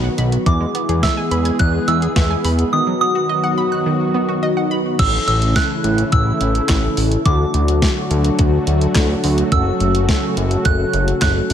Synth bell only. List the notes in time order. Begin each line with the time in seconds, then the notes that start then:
Already playing: B5
0.46 D6
1.03 E6
1.59 F#6
1.88 E6
2.73 D#6
3.01 D#6
4.99 E6
5.28 E6
5.56 F#6
6.12 E6
7.26 D6
9.52 E6
10.65 F#6
11.22 F#6